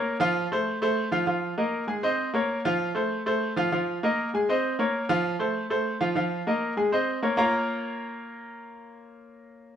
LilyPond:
\new Staff \with { instrumentName = "Grand piano" } { \time 4/4 \key bes \minor \tempo 4 = 196 <bes bes' des''>8 <f f' f''>4 <a a' c''>4 <a a' c''>4 <f f' f''>8 | <f f' f''>4 <bes bes' ees''>4 <aes aes' aes''>8 <c' c'' ees''>4 <bes bes' des''>8~ | <bes bes' des''>8 <f f' f''>4 <a a' c''>4 <a a' c''>4 <f f' f''>8 | <f f' f''>4 <bes bes' ees''>4 <aes aes' aes''>8 <c' c'' ees''>4 <bes bes' des''>8~ |
<bes bes' des''>8 <f f' f''>4 <a a' c''>4 <a a' c''>4 <f f' f''>8 | <f f' f''>4 <bes bes' ees''>4 <aes aes' aes''>8 <c' c'' ees''>4 <bes bes' des''>8 | <bes f' bes' des'' f'' bes''>1~ | <bes f' bes' des'' f'' bes''>1 | }